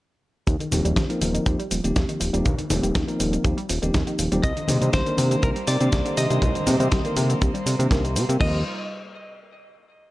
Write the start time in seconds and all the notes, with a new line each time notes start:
0.47 D#2 C3, kick, closed hi-hat, cabasa
0.59 D#3, closed hi-hat, high conga, cabasa
0.72 D#1 F3 A#3 C4 D#4 G4, open hi-hat, high conga, low conga, cabasa
0.85 D#1 G3, closed hi-hat, cabasa
0.96 D#2 F3, kick, snare, closed hi-hat, cabasa
1.09 D#3 F3 A#3 C4 D#4 A#4, closed hi-hat, cabasa
1.21 D#1 C3, open hi-hat, high conga, cabasa
1.34 D#3, closed hi-hat, cabasa
1.46 D#2 F3 A#3 C4 D#4 G4, kick, closed hi-hat, cabasa
1.59 G3, closed hi-hat, cabasa
1.71 D#1 F3, open hi-hat, cabasa
1.84 D#1 D#3 F3 A#3 C4 D#4 G4, closed hi-hat, cabasa
1.96 D#2 C3, kick, snare, closed hi-hat, cabasa
2.09 D#3, closed hi-hat, cabasa
2.20 D#1 F3, open hi-hat, cabasa
2.33 D#1 F3 G3 A#3 C4 D#4 G4, closed hi-hat, cabasa
2.45 D#2 C3, kick, closed hi-hat, low conga, cabasa
2.58 D#3, closed hi-hat, high conga, cabasa
2.70 D#1 F3 A#3 C4 D#4 G4, open hi-hat, high conga, low conga, cabasa
2.83 D#1 G3, closed hi-hat, cabasa
2.95 D#2 F3, kick, snare, closed hi-hat, cabasa
3.08 D#3 F3 A#3 C4 D#4 A#4, closed hi-hat, cabasa
3.19 D#1 C3, open hi-hat, high conga, cabasa
3.33 D#3, closed hi-hat, cabasa
3.44 D#2 F3 A#3 C4 D#4 G4, kick, closed hi-hat, cabasa
3.57 G3, closed hi-hat, cabasa
3.69 D#1 F3, open hi-hat, cabasa
3.82 D#1 D#3 F3 A#3 C4 D#4 G4, closed hi-hat, cabasa
3.94 D#2 C3, kick, snare, closed hi-hat, cabasa
4.07 D#3, closed hi-hat, cabasa
4.19 D#1 F3, open hi-hat, cabasa
4.32 D#1 F3 G3 A#3 C4 D#4 G4, closed hi-hat, cabasa
4.43 C2 C3 G3 A#3 C4 C5 D#5, kick, closed hi-hat, cabasa
4.57 D3, closed hi-hat, high conga, cabasa
4.68 C3 D#3 A#3 C4 D4 G4, open hi-hat, high conga, low conga, cabasa
4.82 C3 G3, closed hi-hat, cabasa
4.93 C2 D#3 C5, kick, snare, closed hi-hat, cabasa
5.06 D3 D#3 A#3 C4 D4 A#4, closed hi-hat, cabasa
5.18 C3, open hi-hat, high conga, cabasa
5.31 D3, closed hi-hat, cabasa
5.42 C2 D#3 A#3 C4 D4 G4 A#4, kick, closed hi-hat, cabasa
5.56 G3, closed hi-hat, cabasa
5.67 C3 D#3 D5, open hi-hat, cabasa
5.80 C3 D3 D#3 A#3 C4 D4 G4, closed hi-hat, cabasa
5.92 C2 C3, kick, snare, closed hi-hat, cabasa
6.05 D3, closed hi-hat, cabasa
6.17 C3 D#3 D#5, open hi-hat, cabasa
6.30 C3 D#3 G3 A#3 C4 D4 G4, closed hi-hat, cabasa
6.42 C2 C3, kick, closed hi-hat, low conga, cabasa
6.55 D3, closed hi-hat, high conga, cabasa
6.66 C3 D3 D#3 A#3 C4 G4, open hi-hat, high conga, low conga, cabasa
6.80 C3 G3, closed hi-hat, cabasa
6.91 C2 D#3, kick, snare, closed hi-hat, cabasa
7.05 D3 D#3 A#3 C4 A#4, closed hi-hat, cabasa
7.16 C3, open hi-hat, high conga, cabasa
7.30 D3, closed hi-hat, cabasa
7.41 C2 D#3 A#3 C4 D4 G4, kick, closed hi-hat, cabasa
7.54 G3, closed hi-hat, cabasa
7.66 C3 D3, open hi-hat, cabasa
7.79 C3 D#3 A#3 C4 D4 G4, closed hi-hat, cabasa
7.91 C2 D#3 A#3 C4 D4 A#4, kick, snare, closed hi-hat, cabasa
8.04 D#3, closed hi-hat, cabasa
8.16 C3, open hi-hat, cabasa
8.29 C3 A#3, closed hi-hat, cabasa
8.39 D#2 C3 F3 G3 A#3 C4 D#4 F4 G4 C5 D#5, kick, crash